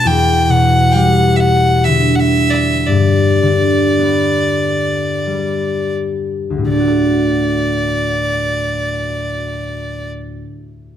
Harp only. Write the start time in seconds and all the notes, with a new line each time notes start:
Already playing: B2 F#3 A3 D4
0.05 E2
0.49 B2
0.95 G3
1.87 D3
2.88 G2
3.42 D3
3.99 B3
5.27 G3
6.50 D2
6.58 A2
6.65 D3
6.72 A3
6.80 F#4
6.87 A4